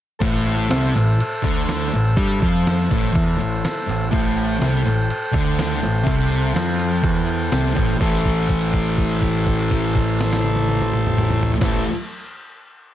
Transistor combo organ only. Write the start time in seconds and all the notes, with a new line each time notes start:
0.19 A4 C5 E5
3.61 C5
4.12 A4 C5 G5
7.99 A4 C5 E5
11.63 A4 C5 E5